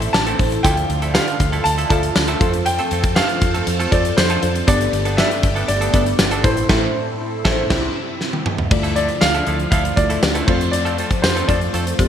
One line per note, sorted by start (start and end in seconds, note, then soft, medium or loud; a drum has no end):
0.00 0.66 A2 medium
0.00 0.61 A3 medium
0.00 0.62 C4 medium
0.00 0.39 E4 medium
0.00 0.62 E4 medium
0.00 0.39 A4 medium
0.00 0.40 C5 medium
0.00 muted clean electric guitar stroke soft
0.00 closed hi-hat medium
0.13 0.32 A1 medium
0.13 0.60 A5 loud
0.13 muted clean electric guitar stroke soft
0.13 snare loud
0.13 tambourine medium
0.27 0.38 A3 medium
0.27 0.38 C4 medium
0.27 0.39 E4 medium
0.27 0.39 A4 medium
0.27 closed hi-hat medium
0.39 0.57 A1 loud
0.39 0.59 E4 medium
0.39 0.59 A4 medium
0.39 0.60 C5 medium
0.39 muted clean electric guitar stroke soft
0.39 kick medium
0.39 open hi-hat medium
0.52 muted clean electric guitar stroke soft
0.52 closed hi-hat medium
0.63 0.83 D2 loud
0.63 1.36 D3 medium
0.63 0.85 F3 medium
0.63 2.39 F3 medium
0.63 0.77 A3 medium
0.63 2.39 D4 medium
0.63 0.77 E4 medium
0.63 1.45 F4 medium
0.63 2.39 F4 medium
0.63 1.45 A4 medium
0.63 0.76 A4 medium
0.63 1.45 D5 medium
0.63 0.71 E5 medium
0.63 1.11 G5 loud
0.63 kick loud
0.63 closed hi-hat medium
0.71 1.48 F5 medium
0.77 muted clean electric guitar stroke soft
0.77 closed hi-hat medium
0.89 1.17 D2 loud
0.89 muted clean electric guitar stroke soft
0.89 closed hi-hat medium
1.02 1.13 F3 medium
1.02 1.14 A3 medium
1.02 1.15 E4 medium
1.02 1.15 A4 medium
1.02 closed hi-hat medium
1.14 1.35 F3 medium
1.14 1.28 A3 medium
1.14 1.27 E4 medium
1.14 1.26 A4 medium
1.14 1.66 F5 loud
1.14 snare loud
1.14 tambourine medium
1.28 muted clean electric guitar stroke soft
1.28 closed hi-hat medium
1.40 1.58 D2 loud
1.40 muted clean electric guitar stroke soft
1.40 kick medium
1.40 closed hi-hat medium
1.52 1.64 F3 soft
1.52 1.65 A3 medium
1.52 1.65 E4 medium
1.52 1.65 A4 medium
1.52 closed hi-hat soft
1.64 1.83 D2 loud
1.64 1.88 A5 loud
1.64 muted clean electric guitar stroke soft
1.64 closed hi-hat medium
1.78 1.89 F3 medium
1.78 1.90 A3 medium
1.78 1.90 E4 medium
1.78 1.91 A4 medium
1.78 closed hi-hat medium
1.89 2.09 D2 medium
1.89 2.11 F3 medium
1.89 2.03 A3 medium
1.89 2.03 E4 medium
1.89 2.30 F4 medium
1.89 2.30 A4 medium
1.89 2.02 A4 medium
1.89 2.31 D5 medium
1.89 2.30 E5 medium
1.89 2.31 F5 medium
1.89 2.68 A5 loud
1.89 kick medium
1.89 closed hi-hat medium
2.03 muted clean electric guitar stroke medium
2.03 closed hi-hat medium
2.16 2.34 D2 loud
2.16 muted clean electric guitar stroke soft
2.16 snare loud
2.16 tambourine medium
2.28 2.40 F3 medium
2.28 2.40 A3 medium
2.28 2.42 E4 medium
2.28 2.41 A4 medium
2.28 closed hi-hat medium
2.40 2.77 F2 loud
2.40 4.66 F3 medium
2.40 2.57 A3 medium
2.40 4.66 C4 medium
2.40 2.54 C4 medium
2.40 3.21 F4 medium
2.40 2.53 F4 medium
2.40 3.22 A4 medium
2.40 4.66 A4 medium
2.40 2.52 A4 medium
2.40 3.22 C5 medium
2.40 kick loud
2.40 closed hi-hat medium
2.53 muted clean electric guitar stroke soft
2.53 closed hi-hat medium
2.66 3.18 G5 loud
2.66 muted clean electric guitar stroke soft
2.66 closed hi-hat medium
2.79 2.90 A3 medium
2.79 2.91 C4 medium
2.79 2.91 F4 medium
2.79 2.92 A4 medium
2.79 closed hi-hat medium
2.91 3.19 F2 medium
2.91 3.07 A3 medium
2.91 3.04 C4 medium
2.91 3.04 F4 medium
2.91 3.03 A4 medium
2.91 closed hi-hat medium
3.03 muted clean electric guitar stroke soft
3.03 kick medium
3.03 closed hi-hat medium
3.16 3.37 A3 medium
3.16 3.29 C4 medium
3.16 3.29 F4 loud
3.16 3.28 A4 loud
3.16 3.88 F5 loud
3.16 snare loud
3.16 tambourine medium
3.29 muted clean electric guitar stroke medium
3.29 closed hi-hat medium
3.41 3.60 F2 loud
3.41 muted clean electric guitar stroke soft
3.41 kick medium
3.41 closed hi-hat medium
3.54 3.66 A3 soft
3.54 3.67 C4 medium
3.54 3.67 F4 medium
3.54 3.68 A4 medium
3.54 closed hi-hat soft
3.67 3.85 F2 loud
3.67 muted clean electric guitar stroke medium
3.67 closed hi-hat medium
3.80 3.91 A3 medium
3.80 3.92 C4 medium
3.80 3.92 F4 medium
3.80 3.93 A4 loud
3.80 closed hi-hat medium
3.91 4.10 F2 medium
3.91 4.08 A3 medium
3.91 4.05 C4 medium
3.91 4.32 F4 medium
3.91 4.04 F4 medium
3.91 4.32 A4 medium
3.91 4.04 A4 medium
3.91 4.33 C5 medium
3.91 4.18 D5 medium
3.91 kick medium
3.91 closed hi-hat medium
4.05 muted clean electric guitar stroke medium
4.05 closed hi-hat medium
4.17 4.36 F2 loud
4.17 4.64 C5 medium
4.17 muted clean electric guitar stroke soft
4.17 snare loud
4.17 tambourine medium
4.30 4.42 A3 medium
4.30 4.42 C4 medium
4.30 4.42 F4 medium
4.30 4.43 A4 medium
4.30 closed hi-hat medium
4.42 4.61 F2 loud
4.42 4.62 F4 medium
4.42 4.63 A4 medium
4.42 4.63 C5 medium
4.42 muted clean electric guitar stroke soft
4.42 closed hi-hat medium
4.55 muted clean electric guitar stroke soft
4.55 closed hi-hat medium
4.67 4.86 G1 loud
4.67 5.39 G2 medium
4.67 4.88 G3 medium
4.67 7.68 A3 medium
4.67 5.48 B3 medium
4.67 6.43 B3 medium
4.67 4.80 B3 medium
4.67 5.48 D4 medium
4.67 4.80 D4 medium
4.67 5.48 G4 medium
4.67 6.43 G4 medium
4.67 5.48 A4 medium
4.67 4.79 A4 loud
4.67 5.20 D5 loud
4.67 5.48 D5 medium
4.67 kick loud
4.67 closed hi-hat loud
4.80 muted clean electric guitar stroke soft
4.80 closed hi-hat medium
4.92 5.20 G1 loud
4.92 muted clean electric guitar stroke soft
4.92 closed hi-hat medium
5.05 5.17 G3 medium
5.05 5.17 B3 medium
5.05 5.18 D4 medium
5.05 5.19 A4 medium
5.05 closed hi-hat medium
5.17 5.38 G3 medium
5.17 5.31 B3 loud
5.17 5.30 D4 loud
5.17 5.29 A4 loud
5.17 5.70 E5 loud
5.17 snare loud
5.17 tambourine medium
5.30 muted clean electric guitar stroke soft
5.30 closed hi-hat medium
5.43 5.62 G1 loud
5.43 muted clean electric guitar stroke soft
5.43 kick medium
5.43 closed hi-hat medium
5.55 5.67 G3 medium
5.55 5.68 B3 medium
5.55 5.68 D4 medium
5.55 5.68 A4 medium
5.55 closed hi-hat soft
5.68 5.87 G1 loud
5.68 6.40 D5 medium
5.68 muted clean electric guitar stroke soft
5.68 closed hi-hat medium
5.81 5.92 G3 medium
5.81 5.93 B3 medium
5.81 5.94 D4 medium
5.81 5.94 A4 medium
5.81 closed hi-hat medium
5.93 6.12 G1 loud
5.93 6.14 G3 medium
5.93 6.33 B3 medium
5.93 6.06 B3 medium
5.93 6.34 D4 medium
5.93 6.06 D4 medium
5.93 6.34 G4 medium
5.93 6.34 A4 medium
5.93 6.05 A4 medium
5.93 6.34 D5 medium
5.93 kick medium
5.93 closed hi-hat medium
6.06 muted clean electric guitar stroke soft
6.06 closed hi-hat medium
6.19 6.44 G1 loud
6.19 muted clean electric guitar stroke soft
6.19 snare loud
6.19 tambourine medium
6.31 6.44 G3 medium
6.31 6.44 B3 medium
6.31 6.45 D4 medium
6.31 6.45 A4 medium
6.31 closed hi-hat medium
6.44 6.62 A1 loud
6.44 6.68 A2 medium
6.44 6.60 A3 medium
6.44 7.69 C4 medium
6.44 6.57 C4 medium
6.44 6.68 E4 medium
6.44 8.69 E4 medium
6.44 6.56 E4 medium
6.44 6.68 A4 medium
6.44 6.56 A4 medium
6.44 6.51 B4 medium
6.44 7.41 C5 medium
6.44 kick loud
6.44 closed hi-hat medium
6.51 6.73 C5 medium
6.57 muted clean electric guitar stroke soft
6.57 closed hi-hat medium
6.69 6.87 A1 loud
6.69 6.87 A2 loud
6.69 6.87 A3 loud
6.69 6.87 C4 loud
6.69 6.86 E4 loud
6.69 6.87 E4 loud
6.69 6.86 A4 loud
6.69 6.87 A4 loud
6.69 kick loud
6.69 snare loud
6.69 crash medium
6.76 6.91 C5 medium
7.44 7.62 A1 loud
7.44 7.62 A2 medium
7.44 7.63 A3 loud
7.44 7.63 C4 loud
7.44 7.62 E4 medium
7.44 7.63 E4 loud
7.44 7.62 A4 loud
7.44 7.62 A4 medium
7.44 kick loud
7.44 snare loud
7.52 7.66 C5 loud
7.70 7.88 C2 loud
7.70 7.88 C3 loud
7.70 8.70 C3 medium
7.70 8.70 G3 medium
7.70 7.88 G3 loud
7.70 7.88 C4 loud
7.70 7.87 E4 loud
7.70 7.88 E4 loud
7.70 7.87 G4 loud
7.70 7.88 G4 loud
7.70 7.88 C5 loud
7.70 kick loud
7.70 snare loud
7.70 crash medium
8.21 snare medium
8.33 high tom medium
8.46 mid tom medium
8.58 floor tom medium
8.70 9.08 D2 loud
8.70 9.43 D3 medium
8.70 10.46 F3 medium
8.70 9.51 A3 medium
8.70 10.46 D4 medium
8.70 9.51 E4 medium
8.70 9.51 F4 medium
8.70 9.52 D5 medium
8.70 muted clean electric guitar stroke soft
8.70 kick loud
8.70 crash medium
8.83 8.95 F3 medium
8.83 8.95 A3 medium
8.83 8.96 E4 medium
8.83 8.96 A4 medium
8.83 closed hi-hat medium
8.96 9.12 F3 medium
8.96 9.09 A3 medium
8.96 9.09 E4 medium
8.96 9.08 A4 medium
8.96 9.22 D5 medium
8.96 closed hi-hat medium
9.08 muted clean electric guitar stroke soft
9.08 closed hi-hat medium
9.21 9.40 D2 loud
9.21 9.68 F5 loud
9.21 muted clean electric guitar stroke soft
9.21 snare loud
9.21 tambourine medium
9.34 9.46 F3 medium
9.34 9.46 A3 medium
9.34 9.47 E4 medium
9.34 9.47 A4 medium
9.34 closed hi-hat medium
9.47 9.65 D2 loud
9.47 9.67 F3 medium
9.47 9.60 A3 medium
9.47 9.59 E4 medium
9.47 9.58 A4 medium
9.47 closed hi-hat medium
9.60 muted clean electric guitar stroke soft
9.60 closed hi-hat soft
9.71 9.90 D2 loud
9.71 9.92 F3 medium
9.71 9.85 A3 medium
9.71 9.84 E4 medium
9.71 9.84 A4 medium
9.71 9.97 F5 medium
9.71 kick loud
9.71 closed hi-hat medium
9.85 muted clean electric guitar stroke soft
9.85 closed hi-hat medium
9.96 10.15 D2 medium
9.96 10.46 A3 medium
9.96 10.48 E4 medium
9.96 10.47 F4 medium
9.96 10.49 D5 medium
9.96 10.48 D5 medium
9.96 muted clean electric guitar stroke soft
9.96 kick medium
9.96 closed hi-hat medium
10.10 10.21 F3 medium
10.10 10.22 A3 medium
10.10 10.22 E4 medium
10.10 10.23 A4 medium
10.10 closed hi-hat medium
10.22 10.41 D2 medium
10.22 muted clean electric guitar stroke soft
10.22 snare loud
10.22 tambourine medium
10.35 10.47 F3 medium
10.35 10.46 A3 medium
10.35 10.48 E4 medium
10.35 10.48 A4 medium
10.35 closed hi-hat medium
10.47 11.02 F2 loud
10.47 12.08 F3 medium
10.47 10.63 A3 medium
10.47 11.28 A3 medium
10.47 11.28 C4 medium
10.47 12.08 C4 medium
10.47 10.60 C4 medium
10.47 11.29 F4 medium
10.47 10.59 F4 medium
10.47 12.08 A4 medium
10.47 10.59 A4 medium
10.47 10.71 C5 medium
10.47 11.29 C5 medium
10.47 kick loud
10.47 crash medium
10.60 muted clean electric guitar stroke soft
10.60 closed hi-hat medium
10.71 11.24 D5 medium
10.71 muted clean electric guitar stroke soft
10.71 closed hi-hat medium
10.85 10.97 A3 medium
10.85 10.98 C4 medium
10.85 10.98 F4 medium
10.85 10.98 A4 medium
10.85 closed hi-hat medium
10.98 11.14 A3 medium
10.98 11.11 C4 medium
10.98 11.10 F4 medium
10.98 11.10 A4 medium
10.98 closed hi-hat medium
11.11 muted clean electric guitar stroke soft
11.11 kick medium
11.11 closed hi-hat soft
11.22 11.41 F2 loud
11.22 11.46 C5 medium
11.22 muted clean electric guitar stroke soft
11.22 snare loud
11.22 tambourine medium
11.36 11.47 A3 soft
11.36 11.47 C4 medium
11.36 11.48 F4 medium
11.36 11.48 A4 medium
11.36 closed hi-hat medium
11.48 11.67 F2 loud
11.48 11.68 A3 medium
11.48 11.61 C4 medium
11.48 11.61 F4 medium
11.48 11.60 A4 medium
11.48 12.08 D5 medium
11.48 kick medium
11.48 closed hi-hat medium
11.61 muted clean electric guitar stroke soft
11.61 closed hi-hat soft
11.73 11.92 F2 loud
11.73 11.94 A3 medium
11.73 11.86 C4 medium
11.73 11.86 F4 medium
11.73 11.85 A4 medium
11.73 closed hi-hat medium
11.86 muted clean electric guitar stroke medium
11.86 closed hi-hat medium
11.99 12.08 F2 loud
11.99 12.08 A3 medium
11.99 12.08 C4 medium
11.99 12.08 F4 medium
11.99 12.08 G4 medium
11.99 12.08 C5 medium
11.99 muted clean electric guitar stroke soft
11.99 kick medium
11.99 closed hi-hat medium